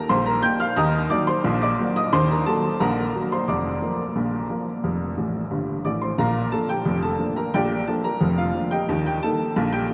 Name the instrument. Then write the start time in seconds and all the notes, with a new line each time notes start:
upright piano
0.09 A#1 A#2 C5 C6
0.26 A#4 A#5
0.43 G3 A#3 D#4 G5 G6
0.60 F5 F6
0.76 D#2 D#3 D#5 A#5 D#6
1.10 F#3 A#3 F#4 D5 D6
1.27 C5 C6
1.44 A#1 A#2
1.62 D5 D6
1.79 F#3 A#3 F#4
1.96 D#5 D#6
2.13 D#2 D#3 C5 C6
2.31 A#4 A#5
2.46 F#3 A#3 F#4 A4 A5
2.80 A#1 A#2 A#4 F#5 A#5
3.15 F#3 A#3 F#4
3.32 C5 C6
3.48 F1 F2 D5 A#5 D6
3.82 F3 A#3 A#4
4.16 A#1 A#2
4.50 F3 A#3 A#4
4.84 F1 F2
5.17 A1 A2
5.51 G1 G2
5.85 A1 A2 D5 D6
6.01 C5 C6
6.18 A#1 A#2 A#4 F5 A#5
6.52 F3 A#3 D4 A4 A5
6.69 G4 G5
6.85 F1 F2
7.02 A4 A5
7.19 F3 A#3 D4
7.36 A#4 A#5
7.54 A#1 A#2 G4 D5 G5
7.87 F3 A#3 D4 A4 A5
8.04 A#4 A#5
8.21 F1 F2
8.38 F4 F5
8.55 F3 A#3 D4
8.71 G4 D#5 G5
8.89 D#2 D#3
9.06 G4 G5
9.23 G3 A#3 D#4 A4 A5
9.56 A#1 A#2
9.72 G4 G5
9.90 G3